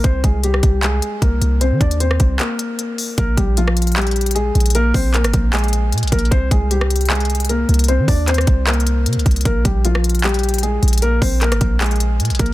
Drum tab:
HH |x-----------x-----------x-----------x-----------x-----------x-----------x-----------x-----------|x-----------x-----x-----x-----------x-----------x-----------x-----------x-----------o-----------|x-----------x-----------x-----------x--x--x--x--x--x--x--x--x--x--x--x--x-----------x--x--x--x--|x-----------o-----------x-----x-----x-----------x--x--x--x--x-----------x--x--x--x--x---x---x---|
CP |------------------------------------------------x-----------------------------------------------|------------------------------------------------x-----------------------------------------------|------------------------------------------------x-----------------------------------------------|------------------------x-----------------------x-----------------------------------------------|
SD |------------------------------r-----------------------------------------------------------------|------------------------------r-----------------------------------------------------------------|------------------------------r-----------------------------------------------------------------|------------------------------r-----------------------------------------------------------------|
BD |o-----------o-----------------------o-----------------------------------o-----------------------|------------o-----------------------o-----------------------------------------------------------|o-----------o-----------------------------------------------------------------------------------|------------o-----------------------o-----------------------------------------------o-----------|

HH |x-----------x-----------x-----------x--x--x--x--x--x--x--x--x--x--x--x--x-----------x--x--x--x--|x-----------o-----------x---x---x---x-----------x---x---x---x-----------x---x---x---x--x--x--x--|x-----------x-----------x-----------x--x--x--x--x--x--x--x--x--x--x--x--x-----------x--x--x--x--|x-----------o-----------x-----x-----x-----------x--x--x--x--x-----------x--x--x--x--x---x-------|
CP |------------------------------------------------x-----------------------------------------------|------------------------x-----------------------x-----------------------------------------------|------------------------------------------------x-----------------------------------------------|------------------------x-----------------------x-----------------------------------------------|
SD |------------------------------r-----------------------------------------------------------------|------------------------------r-----------------------------------------------------------------|------------------------------r-----------------------------------------------------------------|------------------------------r-----------------------------------------------------------------|
BD |o-----------o-----------------------------------------------------------------------------------|------------o-----------------------o-----------------------------------------------o-----------|o-----------o-----------------------------------------------------------------------------------|------------o-----------------------o-----------------------------------------------o-----------|